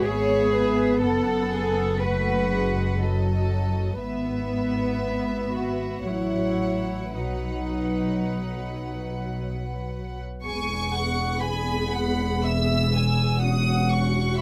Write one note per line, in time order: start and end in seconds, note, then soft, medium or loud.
0.05 1.00 G#1 medium
0.05 2.02 B3 medium
0.05 1.02 G#4 loud
0.05 0.53 C#5 medium
0.05 1.01 E5 medium
0.53 1.02 B4 medium
1.01 4.00 F#1 medium
1.01 1.50 A4 medium
1.01 1.99 A4 medium
1.01 2.00 F#5 medium
1.51 2.01 G#4 medium
2.00 2.51 A3 medium
2.00 3.01 F#4 medium
2.00 3.00 B4 medium
2.00 2.99 F#5 medium
2.51 3.00 G#3 medium
3.00 4.00 F#3 medium
3.00 3.99 A4 medium
3.00 4.00 D#5 medium
4.00 6.02 G#1 medium
4.00 5.50 B3 medium
4.00 6.03 B3 medium
4.00 6.02 B4 soft
4.00 6.03 E5 medium
5.54 6.06 F#4 medium
6.06 7.14 A1 medium
6.06 7.16 F#3 medium
6.06 7.16 E4 medium
6.06 7.14 C#5 medium
6.06 7.16 F#5 soft
7.16 10.25 B1 medium
7.16 10.21 F#3 soft
7.16 9.39 D#4 medium
7.16 10.21 B4 soft
7.16 10.21 F#5 soft
10.45 14.41 E1 medium
10.45 14.41 E2 medium
10.45 13.39 B3 medium
10.45 13.39 G#4 medium
10.45 10.90 G#5 medium
10.45 11.39 C#6 medium
10.92 11.42 F#5 medium
11.41 11.94 G#5 medium
11.41 12.44 B5 medium
11.94 12.45 F#5 medium
12.44 12.94 E5 medium
12.44 13.42 E6 medium
12.95 13.43 G#5 medium
13.42 14.41 C#4 medium
13.42 14.41 F#4 medium
13.42 14.36 F#5 medium
13.42 13.89 D#6 medium
13.91 14.38 C#6 medium
14.37 14.41 E5 medium
14.37 14.41 B5 medium